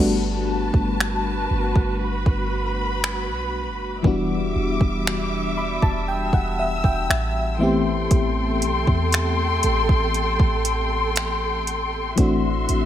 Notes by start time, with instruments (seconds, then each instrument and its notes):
Already playing: 808-style bass G1, fm electric piano G3 A3 B3, string section F#4 B4 A5
0.00 fm electric piano D4 F#4
0.74 808-style bass G1, kick
1.00 finger snap
1.51 808-style bass G1
1.76 808-style bass G1, kick
2.01 string section B5
2.26 808-style bass G1, kick
3.04 finger snap
3.29 808-style bass B1
3.67 808-style bass G1
4.03 808-style bass E1, fm electric piano E3 G3 B3 D4, string section G3 E5 D6, kick
4.07 fm electric piano F#4
4.56 808-style bass E1
4.81 808-style bass E1, kick
5.07 finger snap
5.58 fm electric piano B5
5.82 808-style bass E1, fm electric piano A5, kick
6.07 fm electric piano G5, string section E6
6.33 808-style bass E1, fm electric piano F#5, kick
6.59 fm electric piano E5
6.84 808-style bass E1, fm electric piano G5, kick
7.10 808-style bass A1, fm electric piano E5, finger snap
7.59 fm electric piano E3 A3 B3 C4 E5, string section A4 G5 C6
7.63 fm electric piano G4
8.11 808-style bass A1, kick, closed hi-hat
8.62 808-style bass B1, closed hi-hat
8.87 808-style bass E2, kick
9.12 finger snap, closed hi-hat
9.63 808-style bass A1, closed hi-hat
9.89 808-style bass A1, kick
10.14 closed hi-hat
10.40 808-style bass A1, kick
10.65 closed hi-hat
11.16 finger snap, closed hi-hat
11.67 closed hi-hat
12.16 808-style bass A1, fm electric piano E3 A3 C4 D4, string section F#4 E5 C6, kick, closed hi-hat
12.20 fm electric piano F#4
12.69 808-style bass A1, closed hi-hat